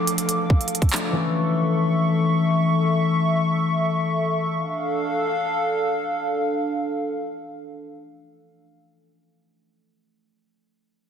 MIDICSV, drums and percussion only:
0, 0, Header, 1, 2, 480
1, 0, Start_track
1, 0, Key_signature, -1, "minor"
1, 0, Tempo, 500000
1, 10655, End_track
2, 0, Start_track
2, 0, Title_t, "Drums"
2, 72, Note_on_c, 9, 42, 82
2, 168, Note_off_c, 9, 42, 0
2, 174, Note_on_c, 9, 42, 87
2, 270, Note_off_c, 9, 42, 0
2, 276, Note_on_c, 9, 42, 80
2, 372, Note_off_c, 9, 42, 0
2, 480, Note_on_c, 9, 36, 92
2, 576, Note_off_c, 9, 36, 0
2, 582, Note_on_c, 9, 42, 45
2, 651, Note_off_c, 9, 42, 0
2, 651, Note_on_c, 9, 42, 51
2, 718, Note_off_c, 9, 42, 0
2, 718, Note_on_c, 9, 42, 60
2, 786, Note_off_c, 9, 42, 0
2, 786, Note_on_c, 9, 36, 87
2, 786, Note_on_c, 9, 42, 62
2, 854, Note_off_c, 9, 42, 0
2, 854, Note_on_c, 9, 42, 69
2, 882, Note_off_c, 9, 36, 0
2, 888, Note_on_c, 9, 39, 119
2, 922, Note_off_c, 9, 42, 0
2, 922, Note_on_c, 9, 42, 79
2, 984, Note_off_c, 9, 39, 0
2, 1018, Note_off_c, 9, 42, 0
2, 10655, End_track
0, 0, End_of_file